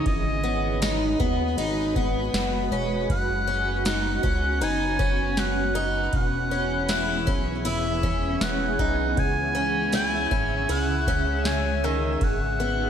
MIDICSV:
0, 0, Header, 1, 7, 480
1, 0, Start_track
1, 0, Key_signature, 4, "minor"
1, 0, Tempo, 759494
1, 37, Time_signature, 4, 2, 24, 8
1, 8152, End_track
2, 0, Start_track
2, 0, Title_t, "Oboe"
2, 0, Program_c, 0, 68
2, 44, Note_on_c, 0, 75, 108
2, 735, Note_off_c, 0, 75, 0
2, 1966, Note_on_c, 0, 78, 121
2, 2416, Note_off_c, 0, 78, 0
2, 2448, Note_on_c, 0, 78, 110
2, 2930, Note_on_c, 0, 80, 115
2, 2939, Note_off_c, 0, 78, 0
2, 3407, Note_on_c, 0, 78, 99
2, 3416, Note_off_c, 0, 80, 0
2, 3882, Note_off_c, 0, 78, 0
2, 3889, Note_on_c, 0, 78, 123
2, 4647, Note_off_c, 0, 78, 0
2, 4841, Note_on_c, 0, 76, 106
2, 5322, Note_on_c, 0, 78, 98
2, 5332, Note_off_c, 0, 76, 0
2, 5807, Note_on_c, 0, 80, 125
2, 5816, Note_off_c, 0, 78, 0
2, 6282, Note_off_c, 0, 80, 0
2, 6287, Note_on_c, 0, 80, 114
2, 6736, Note_off_c, 0, 80, 0
2, 6768, Note_on_c, 0, 78, 107
2, 7244, Note_on_c, 0, 80, 98
2, 7253, Note_off_c, 0, 78, 0
2, 7486, Note_on_c, 0, 76, 84
2, 7495, Note_off_c, 0, 80, 0
2, 7732, Note_on_c, 0, 78, 104
2, 7741, Note_off_c, 0, 76, 0
2, 8152, Note_off_c, 0, 78, 0
2, 8152, End_track
3, 0, Start_track
3, 0, Title_t, "Vibraphone"
3, 0, Program_c, 1, 11
3, 0, Note_on_c, 1, 64, 57
3, 0, Note_on_c, 1, 68, 72
3, 0, Note_on_c, 1, 71, 54
3, 0, Note_on_c, 1, 78, 51
3, 117, Note_off_c, 1, 68, 0
3, 252, Note_off_c, 1, 71, 0
3, 278, Note_on_c, 1, 73, 63
3, 386, Note_off_c, 1, 64, 0
3, 522, Note_off_c, 1, 78, 0
3, 2037, Note_off_c, 1, 73, 0
3, 2200, Note_on_c, 1, 78, 62
3, 2916, Note_on_c, 1, 80, 69
3, 3066, Note_on_c, 1, 83, 58
3, 3215, Note_on_c, 1, 85, 51
3, 3958, Note_off_c, 1, 78, 0
3, 4091, Note_off_c, 1, 80, 0
3, 4226, Note_off_c, 1, 83, 0
3, 4361, Note_off_c, 1, 85, 0
3, 5794, Note_on_c, 1, 78, 82
3, 7555, Note_off_c, 1, 78, 0
3, 8152, End_track
4, 0, Start_track
4, 0, Title_t, "Ambient pad"
4, 0, Program_c, 2, 92
4, 36, Note_on_c, 2, 75, 77
4, 37, Note_on_c, 2, 56, 78
4, 37, Note_on_c, 2, 66, 81
4, 37, Note_on_c, 2, 71, 93
4, 1937, Note_off_c, 2, 56, 0
4, 1937, Note_off_c, 2, 75, 0
4, 1938, Note_off_c, 2, 71, 0
4, 1950, Note_on_c, 2, 61, 86
4, 1953, Note_on_c, 2, 59, 84
4, 3851, Note_off_c, 2, 66, 0
4, 3854, Note_off_c, 2, 61, 0
4, 3872, Note_on_c, 2, 61, 88
4, 3872, Note_on_c, 2, 68, 96
4, 3875, Note_on_c, 2, 52, 88
4, 5769, Note_off_c, 2, 59, 0
4, 5775, Note_off_c, 2, 68, 0
4, 5776, Note_off_c, 2, 52, 0
4, 5799, Note_on_c, 2, 49, 87
4, 5800, Note_on_c, 2, 76, 78
4, 5802, Note_on_c, 2, 68, 89
4, 7689, Note_off_c, 2, 61, 0
4, 7699, Note_off_c, 2, 49, 0
4, 7699, Note_off_c, 2, 76, 0
4, 7700, Note_off_c, 2, 68, 0
4, 7713, Note_on_c, 2, 71, 94
4, 7715, Note_on_c, 2, 56, 93
4, 7716, Note_on_c, 2, 66, 82
4, 7718, Note_on_c, 2, 63, 80
4, 8152, Note_off_c, 2, 56, 0
4, 8152, Note_off_c, 2, 63, 0
4, 8152, Note_off_c, 2, 66, 0
4, 8152, Note_off_c, 2, 71, 0
4, 8152, End_track
5, 0, Start_track
5, 0, Title_t, "Twelve-string acoustic guitar"
5, 0, Program_c, 3, 25
5, 275, Note_on_c, 3, 59, 74
5, 514, Note_off_c, 3, 59, 0
5, 517, Note_on_c, 3, 63, 84
5, 754, Note_off_c, 3, 63, 0
5, 756, Note_on_c, 3, 59, 92
5, 995, Note_off_c, 3, 59, 0
5, 997, Note_on_c, 3, 63, 87
5, 1236, Note_off_c, 3, 63, 0
5, 1239, Note_on_c, 3, 59, 79
5, 1716, Note_off_c, 3, 59, 0
5, 1718, Note_on_c, 3, 61, 79
5, 1957, Note_off_c, 3, 61, 0
5, 2196, Note_on_c, 3, 61, 81
5, 2434, Note_off_c, 3, 61, 0
5, 2437, Note_on_c, 3, 63, 84
5, 2672, Note_off_c, 3, 63, 0
5, 2674, Note_on_c, 3, 61, 80
5, 2913, Note_off_c, 3, 61, 0
5, 2916, Note_on_c, 3, 63, 85
5, 3152, Note_off_c, 3, 63, 0
5, 3155, Note_on_c, 3, 61, 82
5, 3632, Note_off_c, 3, 61, 0
5, 3634, Note_on_c, 3, 63, 90
5, 3875, Note_off_c, 3, 63, 0
5, 4117, Note_on_c, 3, 61, 73
5, 4354, Note_on_c, 3, 64, 89
5, 4357, Note_off_c, 3, 61, 0
5, 4594, Note_on_c, 3, 61, 81
5, 4596, Note_off_c, 3, 64, 0
5, 4834, Note_on_c, 3, 64, 85
5, 4835, Note_off_c, 3, 61, 0
5, 5075, Note_off_c, 3, 64, 0
5, 5076, Note_on_c, 3, 61, 76
5, 5554, Note_off_c, 3, 61, 0
5, 5556, Note_on_c, 3, 63, 77
5, 5796, Note_off_c, 3, 63, 0
5, 6034, Note_on_c, 3, 61, 82
5, 6275, Note_off_c, 3, 61, 0
5, 6278, Note_on_c, 3, 64, 86
5, 6517, Note_off_c, 3, 64, 0
5, 6517, Note_on_c, 3, 61, 80
5, 6757, Note_off_c, 3, 61, 0
5, 6758, Note_on_c, 3, 64, 83
5, 6997, Note_off_c, 3, 64, 0
5, 7001, Note_on_c, 3, 61, 87
5, 7479, Note_off_c, 3, 61, 0
5, 7483, Note_on_c, 3, 51, 78
5, 7720, Note_off_c, 3, 51, 0
5, 7962, Note_on_c, 3, 59, 73
5, 8152, Note_off_c, 3, 59, 0
5, 8152, End_track
6, 0, Start_track
6, 0, Title_t, "Analog synth bass"
6, 0, Program_c, 4, 38
6, 38, Note_on_c, 4, 32, 109
6, 732, Note_off_c, 4, 32, 0
6, 757, Note_on_c, 4, 39, 90
6, 985, Note_off_c, 4, 39, 0
6, 995, Note_on_c, 4, 32, 112
6, 1452, Note_off_c, 4, 32, 0
6, 1477, Note_on_c, 4, 30, 85
6, 1705, Note_off_c, 4, 30, 0
6, 1715, Note_on_c, 4, 28, 98
6, 1944, Note_off_c, 4, 28, 0
6, 1958, Note_on_c, 4, 30, 103
6, 2652, Note_off_c, 4, 30, 0
6, 2679, Note_on_c, 4, 37, 99
6, 2913, Note_on_c, 4, 30, 108
6, 2923, Note_off_c, 4, 37, 0
6, 3850, Note_off_c, 4, 30, 0
6, 3876, Note_on_c, 4, 28, 115
6, 4596, Note_on_c, 4, 35, 94
6, 4606, Note_off_c, 4, 28, 0
6, 4835, Note_on_c, 4, 28, 122
6, 4845, Note_off_c, 4, 35, 0
6, 5292, Note_off_c, 4, 28, 0
6, 5316, Note_on_c, 4, 28, 94
6, 5544, Note_off_c, 4, 28, 0
6, 5556, Note_on_c, 4, 35, 86
6, 5785, Note_off_c, 4, 35, 0
6, 5796, Note_on_c, 4, 37, 114
6, 6491, Note_off_c, 4, 37, 0
6, 6516, Note_on_c, 4, 32, 99
6, 6744, Note_off_c, 4, 32, 0
6, 6759, Note_on_c, 4, 37, 103
6, 7692, Note_off_c, 4, 37, 0
6, 7717, Note_on_c, 4, 32, 105
6, 8152, Note_off_c, 4, 32, 0
6, 8152, End_track
7, 0, Start_track
7, 0, Title_t, "Drums"
7, 37, Note_on_c, 9, 51, 54
7, 38, Note_on_c, 9, 36, 104
7, 100, Note_off_c, 9, 51, 0
7, 101, Note_off_c, 9, 36, 0
7, 518, Note_on_c, 9, 51, 67
7, 521, Note_on_c, 9, 38, 103
7, 522, Note_on_c, 9, 54, 77
7, 581, Note_off_c, 9, 51, 0
7, 584, Note_off_c, 9, 38, 0
7, 585, Note_off_c, 9, 54, 0
7, 759, Note_on_c, 9, 36, 101
7, 822, Note_off_c, 9, 36, 0
7, 999, Note_on_c, 9, 51, 75
7, 1062, Note_off_c, 9, 51, 0
7, 1237, Note_on_c, 9, 36, 86
7, 1301, Note_off_c, 9, 36, 0
7, 1480, Note_on_c, 9, 38, 100
7, 1480, Note_on_c, 9, 54, 59
7, 1481, Note_on_c, 9, 51, 57
7, 1544, Note_off_c, 9, 38, 0
7, 1544, Note_off_c, 9, 51, 0
7, 1544, Note_off_c, 9, 54, 0
7, 1957, Note_on_c, 9, 36, 110
7, 1959, Note_on_c, 9, 51, 58
7, 2020, Note_off_c, 9, 36, 0
7, 2022, Note_off_c, 9, 51, 0
7, 2435, Note_on_c, 9, 51, 69
7, 2439, Note_on_c, 9, 38, 102
7, 2439, Note_on_c, 9, 54, 74
7, 2499, Note_off_c, 9, 51, 0
7, 2502, Note_off_c, 9, 38, 0
7, 2502, Note_off_c, 9, 54, 0
7, 2679, Note_on_c, 9, 36, 106
7, 2742, Note_off_c, 9, 36, 0
7, 2918, Note_on_c, 9, 51, 75
7, 2981, Note_off_c, 9, 51, 0
7, 3157, Note_on_c, 9, 36, 90
7, 3220, Note_off_c, 9, 36, 0
7, 3395, Note_on_c, 9, 38, 98
7, 3395, Note_on_c, 9, 54, 65
7, 3396, Note_on_c, 9, 51, 54
7, 3459, Note_off_c, 9, 38, 0
7, 3459, Note_off_c, 9, 51, 0
7, 3459, Note_off_c, 9, 54, 0
7, 3873, Note_on_c, 9, 51, 50
7, 3875, Note_on_c, 9, 36, 105
7, 3936, Note_off_c, 9, 51, 0
7, 3938, Note_off_c, 9, 36, 0
7, 4352, Note_on_c, 9, 51, 72
7, 4355, Note_on_c, 9, 38, 99
7, 4356, Note_on_c, 9, 54, 68
7, 4415, Note_off_c, 9, 51, 0
7, 4418, Note_off_c, 9, 38, 0
7, 4419, Note_off_c, 9, 54, 0
7, 4597, Note_on_c, 9, 36, 101
7, 4660, Note_off_c, 9, 36, 0
7, 4836, Note_on_c, 9, 51, 77
7, 4900, Note_off_c, 9, 51, 0
7, 5076, Note_on_c, 9, 36, 81
7, 5139, Note_off_c, 9, 36, 0
7, 5317, Note_on_c, 9, 38, 108
7, 5317, Note_on_c, 9, 51, 52
7, 5317, Note_on_c, 9, 54, 66
7, 5380, Note_off_c, 9, 38, 0
7, 5380, Note_off_c, 9, 51, 0
7, 5380, Note_off_c, 9, 54, 0
7, 5557, Note_on_c, 9, 36, 78
7, 5620, Note_off_c, 9, 36, 0
7, 5797, Note_on_c, 9, 36, 109
7, 5797, Note_on_c, 9, 51, 59
7, 5860, Note_off_c, 9, 36, 0
7, 5860, Note_off_c, 9, 51, 0
7, 6272, Note_on_c, 9, 51, 67
7, 6276, Note_on_c, 9, 38, 92
7, 6276, Note_on_c, 9, 54, 65
7, 6335, Note_off_c, 9, 51, 0
7, 6339, Note_off_c, 9, 38, 0
7, 6339, Note_off_c, 9, 54, 0
7, 6518, Note_on_c, 9, 36, 91
7, 6581, Note_off_c, 9, 36, 0
7, 6756, Note_on_c, 9, 51, 70
7, 6820, Note_off_c, 9, 51, 0
7, 6997, Note_on_c, 9, 36, 84
7, 7060, Note_off_c, 9, 36, 0
7, 7238, Note_on_c, 9, 38, 115
7, 7238, Note_on_c, 9, 54, 63
7, 7239, Note_on_c, 9, 51, 57
7, 7301, Note_off_c, 9, 38, 0
7, 7301, Note_off_c, 9, 54, 0
7, 7302, Note_off_c, 9, 51, 0
7, 7718, Note_on_c, 9, 36, 112
7, 7718, Note_on_c, 9, 51, 55
7, 7781, Note_off_c, 9, 36, 0
7, 7781, Note_off_c, 9, 51, 0
7, 8152, End_track
0, 0, End_of_file